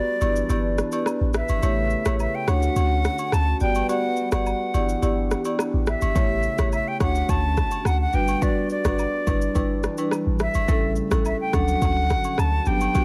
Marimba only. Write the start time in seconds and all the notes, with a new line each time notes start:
Already playing: B3 F#4 G4 D5
0.21 B3 E4 G4 D5
0.49 B3 E4 G4 D5
0.92 B3 E4 G4 D5
1.62 A3 E4 G4 C#5
2.06 A3 E4 G4 C#5
2.47 A3 D4 F#4 C#5
3.60 B3 F#4 G4 D5
3.89 B3 F#4 G4 D5
4.32 B3 F#4 G4 D5
4.74 B3 E4 G4 D5
5.02 B3 E4 G4 D5
5.45 B3 E4 G4 D5
6.15 A3 E4 G4 C#5
6.58 A3 E4 G4 C#5
7.00 A3 D4 F#4 C#5
8.13 G3 D4 F#4 B4
8.41 G3 D4 F#4 B4
8.85 G3 D4 F#4 B4
9.27 G3 D4 E4 B4
9.55 G3 D4 E4 B4
9.98 G3 D4 E4 B4
10.68 G3 C#4 E4 A4
11.11 G3 C#4 E4 A4
11.53 F#3 C#4 D4 A4
12.66 F#3 B3 D4 G4
12.94 B3 D4 F#4 G4